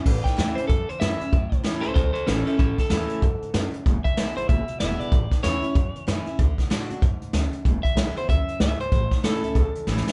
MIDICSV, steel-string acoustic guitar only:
0, 0, Header, 1, 2, 480
1, 0, Start_track
1, 0, Key_signature, 3, "major"
1, 0, Tempo, 316456
1, 85, Time_signature, 4, 2, 24, 8
1, 15352, End_track
2, 0, Start_track
2, 0, Title_t, "Steel-string acoustic guitar"
2, 0, Program_c, 0, 25
2, 97, Note_on_c, 0, 45, 96
2, 554, Note_on_c, 0, 52, 84
2, 569, Note_on_c, 0, 57, 89
2, 582, Note_on_c, 0, 61, 86
2, 595, Note_on_c, 0, 64, 91
2, 843, Note_off_c, 0, 52, 0
2, 848, Note_off_c, 0, 64, 0
2, 851, Note_off_c, 0, 57, 0
2, 857, Note_off_c, 0, 61, 0
2, 867, Note_on_c, 0, 64, 58
2, 900, Note_on_c, 0, 61, 56
2, 1015, Note_off_c, 0, 45, 0
2, 1042, Note_off_c, 0, 64, 0
2, 1055, Note_on_c, 0, 40, 93
2, 1059, Note_off_c, 0, 61, 0
2, 1528, Note_on_c, 0, 52, 85
2, 1545, Note_on_c, 0, 57, 92
2, 1556, Note_on_c, 0, 61, 84
2, 1566, Note_on_c, 0, 64, 102
2, 1798, Note_off_c, 0, 64, 0
2, 1811, Note_off_c, 0, 52, 0
2, 1816, Note_on_c, 0, 64, 54
2, 1819, Note_off_c, 0, 57, 0
2, 1825, Note_off_c, 0, 61, 0
2, 1851, Note_on_c, 0, 61, 49
2, 1975, Note_off_c, 0, 40, 0
2, 1997, Note_off_c, 0, 64, 0
2, 2015, Note_off_c, 0, 61, 0
2, 2017, Note_on_c, 0, 45, 86
2, 2481, Note_on_c, 0, 52, 87
2, 2491, Note_on_c, 0, 57, 98
2, 2500, Note_on_c, 0, 61, 107
2, 2518, Note_on_c, 0, 64, 92
2, 2753, Note_off_c, 0, 64, 0
2, 2768, Note_off_c, 0, 52, 0
2, 2772, Note_on_c, 0, 64, 66
2, 2773, Note_off_c, 0, 57, 0
2, 2778, Note_off_c, 0, 61, 0
2, 2807, Note_on_c, 0, 61, 54
2, 2937, Note_off_c, 0, 45, 0
2, 2956, Note_off_c, 0, 64, 0
2, 2973, Note_off_c, 0, 61, 0
2, 3446, Note_on_c, 0, 52, 88
2, 3461, Note_on_c, 0, 57, 96
2, 3471, Note_on_c, 0, 61, 92
2, 3481, Note_on_c, 0, 64, 92
2, 3729, Note_off_c, 0, 64, 0
2, 3731, Note_off_c, 0, 52, 0
2, 3738, Note_off_c, 0, 57, 0
2, 3744, Note_off_c, 0, 61, 0
2, 3747, Note_on_c, 0, 64, 67
2, 3781, Note_on_c, 0, 61, 51
2, 3924, Note_off_c, 0, 64, 0
2, 3941, Note_off_c, 0, 61, 0
2, 3942, Note_on_c, 0, 45, 90
2, 4411, Note_on_c, 0, 52, 94
2, 4418, Note_on_c, 0, 57, 97
2, 4436, Note_on_c, 0, 61, 101
2, 4442, Note_on_c, 0, 64, 107
2, 4860, Note_off_c, 0, 45, 0
2, 4873, Note_off_c, 0, 52, 0
2, 4876, Note_off_c, 0, 57, 0
2, 4885, Note_off_c, 0, 61, 0
2, 4888, Note_off_c, 0, 64, 0
2, 4905, Note_on_c, 0, 44, 92
2, 5360, Note_off_c, 0, 44, 0
2, 5377, Note_on_c, 0, 42, 86
2, 5836, Note_off_c, 0, 42, 0
2, 5857, Note_on_c, 0, 40, 84
2, 6328, Note_on_c, 0, 50, 95
2, 6341, Note_on_c, 0, 56, 101
2, 6350, Note_on_c, 0, 59, 104
2, 6367, Note_on_c, 0, 64, 104
2, 6613, Note_off_c, 0, 50, 0
2, 6616, Note_off_c, 0, 64, 0
2, 6619, Note_off_c, 0, 56, 0
2, 6624, Note_off_c, 0, 59, 0
2, 6634, Note_on_c, 0, 64, 63
2, 6662, Note_on_c, 0, 59, 55
2, 6778, Note_off_c, 0, 40, 0
2, 6808, Note_off_c, 0, 64, 0
2, 6822, Note_off_c, 0, 59, 0
2, 6823, Note_on_c, 0, 47, 85
2, 7287, Note_on_c, 0, 50, 82
2, 7305, Note_on_c, 0, 56, 96
2, 7314, Note_on_c, 0, 59, 94
2, 7326, Note_on_c, 0, 64, 93
2, 7740, Note_off_c, 0, 47, 0
2, 7751, Note_off_c, 0, 50, 0
2, 7759, Note_off_c, 0, 56, 0
2, 7764, Note_off_c, 0, 59, 0
2, 7770, Note_off_c, 0, 64, 0
2, 7772, Note_on_c, 0, 45, 86
2, 8232, Note_on_c, 0, 52, 89
2, 8252, Note_on_c, 0, 57, 95
2, 8262, Note_on_c, 0, 61, 89
2, 8269, Note_on_c, 0, 64, 102
2, 8513, Note_off_c, 0, 64, 0
2, 8524, Note_off_c, 0, 52, 0
2, 8532, Note_on_c, 0, 64, 66
2, 8535, Note_off_c, 0, 57, 0
2, 8539, Note_off_c, 0, 61, 0
2, 8566, Note_on_c, 0, 61, 51
2, 8694, Note_off_c, 0, 45, 0
2, 8717, Note_off_c, 0, 64, 0
2, 8730, Note_on_c, 0, 40, 86
2, 8734, Note_off_c, 0, 61, 0
2, 9202, Note_on_c, 0, 52, 83
2, 9217, Note_on_c, 0, 57, 92
2, 9227, Note_on_c, 0, 61, 87
2, 9235, Note_on_c, 0, 64, 91
2, 9482, Note_off_c, 0, 64, 0
2, 9489, Note_off_c, 0, 52, 0
2, 9497, Note_off_c, 0, 57, 0
2, 9501, Note_off_c, 0, 61, 0
2, 9501, Note_on_c, 0, 64, 58
2, 9538, Note_on_c, 0, 61, 51
2, 9653, Note_off_c, 0, 40, 0
2, 9681, Note_off_c, 0, 64, 0
2, 9692, Note_on_c, 0, 50, 96
2, 9700, Note_off_c, 0, 61, 0
2, 10146, Note_off_c, 0, 50, 0
2, 10164, Note_on_c, 0, 50, 93
2, 10179, Note_on_c, 0, 57, 87
2, 10191, Note_on_c, 0, 62, 95
2, 10197, Note_on_c, 0, 66, 110
2, 10450, Note_off_c, 0, 50, 0
2, 10450, Note_off_c, 0, 66, 0
2, 10457, Note_off_c, 0, 57, 0
2, 10463, Note_off_c, 0, 62, 0
2, 10468, Note_on_c, 0, 66, 60
2, 10502, Note_on_c, 0, 62, 50
2, 10644, Note_off_c, 0, 66, 0
2, 10657, Note_on_c, 0, 44, 79
2, 10661, Note_off_c, 0, 62, 0
2, 11114, Note_off_c, 0, 44, 0
2, 11133, Note_on_c, 0, 42, 91
2, 11592, Note_off_c, 0, 42, 0
2, 11619, Note_on_c, 0, 40, 88
2, 12082, Note_on_c, 0, 50, 87
2, 12098, Note_on_c, 0, 56, 102
2, 12112, Note_on_c, 0, 59, 99
2, 12122, Note_on_c, 0, 64, 96
2, 12364, Note_off_c, 0, 64, 0
2, 12368, Note_off_c, 0, 50, 0
2, 12376, Note_off_c, 0, 56, 0
2, 12382, Note_off_c, 0, 59, 0
2, 12382, Note_on_c, 0, 64, 60
2, 12421, Note_on_c, 0, 59, 50
2, 12536, Note_off_c, 0, 40, 0
2, 12560, Note_off_c, 0, 64, 0
2, 12579, Note_off_c, 0, 59, 0
2, 12583, Note_on_c, 0, 42, 81
2, 13036, Note_off_c, 0, 42, 0
2, 13061, Note_on_c, 0, 44, 86
2, 13514, Note_off_c, 0, 44, 0
2, 13532, Note_on_c, 0, 45, 82
2, 14008, Note_on_c, 0, 52, 90
2, 14021, Note_on_c, 0, 57, 92
2, 14028, Note_on_c, 0, 61, 100
2, 14037, Note_on_c, 0, 64, 95
2, 14288, Note_off_c, 0, 52, 0
2, 14295, Note_off_c, 0, 57, 0
2, 14297, Note_off_c, 0, 64, 0
2, 14299, Note_off_c, 0, 61, 0
2, 14316, Note_on_c, 0, 64, 62
2, 14354, Note_on_c, 0, 61, 51
2, 14450, Note_off_c, 0, 45, 0
2, 14485, Note_off_c, 0, 64, 0
2, 14502, Note_on_c, 0, 40, 87
2, 14504, Note_off_c, 0, 61, 0
2, 14970, Note_on_c, 0, 52, 85
2, 14984, Note_on_c, 0, 57, 81
2, 14996, Note_on_c, 0, 61, 91
2, 15009, Note_on_c, 0, 64, 96
2, 15248, Note_off_c, 0, 52, 0
2, 15252, Note_off_c, 0, 64, 0
2, 15255, Note_off_c, 0, 57, 0
2, 15261, Note_off_c, 0, 61, 0
2, 15270, Note_on_c, 0, 64, 60
2, 15352, Note_off_c, 0, 40, 0
2, 15352, Note_off_c, 0, 64, 0
2, 15352, End_track
0, 0, End_of_file